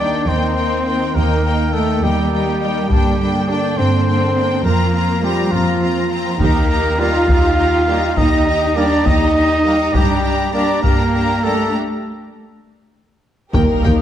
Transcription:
Already playing: D#2 D#3 A#3 D#4
0.00 D4 D5 G5
0.26 D#2 A#3 C4 D#4 C5 G5
0.56 A#3 D#4 G5
0.85 A#3 D#4 G5
1.15 D#2 A#3 D#4 A#4 G5
1.43 A#3 D#4 G5
1.73 A3 A#3 D#4 A4 G5
2.01 D#2 G3 A#3 D#4 G4 G5
2.31 A#3 D#4 G5
2.61 A#3 D#4 G5
2.89 G2 G3 A#3 D4 G4 G5, taiko
2.94 D3
3.20 A#3 D4 G5
3.49 A#3 D4 D5 G5
3.77 G2 A#3 C4 D4 C5 G5
4.07 A#3 D4 G5
4.36 A#3 D4 G5
4.64 F2 F3 A#3 C4 F4 A#4 A#5
4.94 C4 F4 A#5
5.23 G3 C4 F4 G4 A#5
5.51 F2 F3 C4 F4 A#5
5.83 C4 F4 A#5
6.10 C4 F4 A#5
6.39 D#2 A#3 D#4 G4 A#4 A#5, taiko
6.69 D#4 G4 A#5
6.99 G3 A#3 D#4 F4 G4 F5 A#5
7.29 D#2 D#4 G4 A#5, taiko
7.58 D#4 G4 A#5
7.87 G3 A#3 D#4 G4 A#5
8.17 D#2 D#4 G4 D#5 A#5, taiko
8.47 D#4 G4 A#5
8.75 G3 A#3 D4 D#4 G4 D5 A#5
9.06 D#2 D#4 G4 D#5 A#5, taiko
9.35 D#4 G4 A#5
9.64 G3 A#3 D#4 G4 A#5
9.93 G2 G3 D4 G4 A#5, taiko
10.23 D4 G4 A#5
10.53 G3 A#3 D4 G4 D5 A#5
10.82 G2 A#3 D4 G4 A#4 A#5, taiko
11.12 D4 G4 A#5
11.44 G3 A3 A#3 D4 G4 A4 A#5
13.53 D#2 G3 A#3 D#4 G4 A#4 G5, taiko, impact
13.83 D#2 G4 A#4 G5

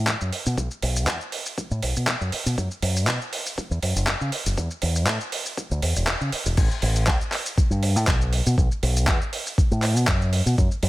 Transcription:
Already playing: A2
0.07 kick, clap, shaker
0.21 F#2, shaker
0.32 open hi-hat
0.46 B2, shaker
0.57 B1, kick, shaker
0.71 shaker
0.82 B1, open hi-hat
0.96 shaker
1.07 E2, kick, clap, shaker
1.21 shaker
1.32 open hi-hat
1.46 shaker
1.58 kick, shaker
1.71 A2, shaker
1.82 B1, open hi-hat
1.97 B2, shaker
2.07 kick, clap, shaker
2.21 F#2, shaker
2.32 muted fingered electric bass stroke, open hi-hat
2.46 B2, shaker
2.58 F#2, kick, shaker
2.71 shaker
2.82 F#2, open hi-hat
2.96 shaker
3.07 B2, kick, clap, shaker
3.21 shaker
3.33 open hi-hat
3.46 shaker
3.58 muted fingered electric bass stroke, kick, shaker
3.71 E2, shaker
3.83 F#2, open hi-hat
3.96 F#1, shaker
4.07 kick, clap, shaker
4.21 C#3, shaker
4.32 open hi-hat
4.46 F#1, shaker
4.57 E2, kick, shaker
4.71 shaker
4.82 E2, open hi-hat
4.96 shaker
5.07 A2, kick, clap, shaker
5.21 shaker
5.32 open hi-hat
5.46 shaker
5.57 kick, shaker
5.71 D2, shaker
5.82 E2, open hi-hat
5.96 E1, shaker
6.07 kick, clap, shaker
6.21 C#3, shaker
6.32 muted fingered electric bass stroke, open hi-hat
6.46 E1, shaker
6.57 A1, kick, crash, shaker
6.71 shaker
6.82 A1, open hi-hat
6.96 shaker
7.07 C#2, kick, clap, shaker
7.21 shaker
7.32 clap, open hi-hat
7.46 shaker
7.57 muted fingered electric bass stroke, kick, shaker
7.70 G2, shaker
7.83 open hi-hat
7.96 A2, shaker
8.07 B1, kick, clap, shaker
8.21 shaker
8.33 open hi-hat
8.46 B2, shaker
8.58 B1, kick, shaker
8.72 shaker
8.83 B1, open hi-hat
8.96 shaker
9.07 E2, kick, clap, shaker
9.22 shaker
9.33 open hi-hat
9.47 shaker
9.58 kick, shaker
9.71 A2, shaker
9.82 clap, open hi-hat
9.96 B2, shaker
10.07 F#2, kick, clap, shaker
10.21 shaker
10.33 open hi-hat
10.46 B2, shaker
10.58 F#2, kick, shaker
10.72 shaker
10.83 F#2, open hi-hat

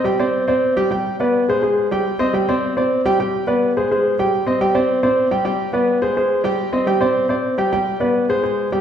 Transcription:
0.04 G3 G4 G5
0.19 C4 C5 D5
0.48 C4 C5 D5
0.76 G3 G4 G5
0.91 G3 G4 G5
1.20 B3 B4 D5
1.49 G#3 G#4 C5
1.62 G#3 G#4 C5
1.91 G3 G4 G5
2.19 C4 C5 D#5
2.34 G3 G4 G5
2.49 C4 C5 D5
2.77 C4 C5 D5
3.05 G3 G4 G5
3.19 G3 G4 G5
3.47 B3 B4 D5
3.77 G#3 G#4 C5
3.91 G#3 G#4 C5
4.19 G3 G4 G5
4.47 C4 C5 D#5
4.61 G3 G4 G5
4.75 C4 C5 D5
5.03 C4 C5 D5
5.31 G3 G4 G5
5.45 G3 G4 G5
5.73 B3 B4 D5
6.02 G#3 G#4 C5
6.17 G#3 G#4 C5
6.44 G3 G4 G5
6.73 C4 C5 D#5
6.87 G3 G4 G5
7.01 C4 C5 D5
7.29 C4 C5 D5
7.58 G3 G4 G5
7.72 G3 G4 G5
8.00 B3 B4 D5
8.29 G#3 G#4 C5
8.43 G#3 G#4 C5
8.72 G3 G4 G5

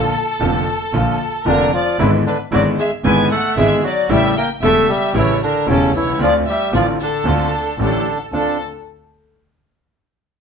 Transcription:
Already playing: A4
0.40 F1 F2 D3 F3 A#3 F4
0.93 A#1 A#2 D3 F3 A#3 F4
1.46 F1 F2 D3 F3 A#3 D4 F4 A#4
1.73 F3 F4 D5
1.99 G#1 G#2 D3 E3 G#3 B3 E4 B4
2.26 D3 D4 B4
2.51 G#1 G#2 D3 F#3 G#3 B3 E4 F#4 D5
2.79 G#3 G#4 E5
3.04 G#1 G#2 D3 G#3 B3 E4 B4 G#5
3.31 A3 A4 F#5
3.56 G#1 G#2 D3 G#3 B3 E4 G#4 E5
3.84 F#3 F#4 D5
4.09 A1 A2 C#3 G3 A3 E4 G4 E5
4.37 A#3 A#4 G5
4.61 E1 E2 C#3 G3 A3 E4 A4 E5
4.89 G3 G4 E5
5.14 A1 A2 C#3 E3 G3 A3 E4 C#5
5.43 D3 D4 A#4
5.66 E1 E2 C#3 G3 A3 C#4 E4 A4
5.94 C2 E3 E4 C#5
6.01 B1
6.07 C2
6.13 C#2
6.19 D2 D3 F3 A3 C4 F4 D5
6.48 G3 G4 E5
6.72 A1 A2 D3 F3 A3 C4 F4 D5
7.00 D3 D4 A4
7.25 D2 D3 A3 C4 F4
7.78 A1 A2 D3 E3 A3 C#4 G4 A4
7.82 D4
8.32 D2 C4 D4 F4 A4

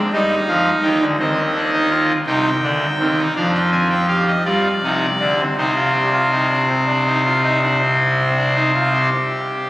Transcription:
0.13 G2 G3 D#4 D#5
0.47 F2 F3 F5
0.83 D#2 D#3 G5
1.00 D2 D3
1.19 D#2 D#3 C4 D#5
1.55 D4
1.73 D#4
1.90 F4
2.26 C2 C3 D#4 G5
2.63 D2 D3 D4
2.99 D#2 D#3 C4
3.18 D#4
3.36 F2 F3 D4 F5
3.54 G5
3.71 C4 G#5
3.90 G5
4.08 G4 F5
4.27 D#5
4.45 G2 G3 F4 D5
4.83 C2 C3 D#4
5.20 D2 D3 D4
5.39 C4
5.57 C2 C3 D#4 C5
5.76 F4
5.93 G4
6.13 F4
6.31 D#4
6.49 D4
6.68 C4
6.87 D4
7.06 D#4
7.25 F4
7.43 D#4
7.61 D4
7.81 C4
8.36 D4
8.55 D#4
8.74 F4
8.93 G4

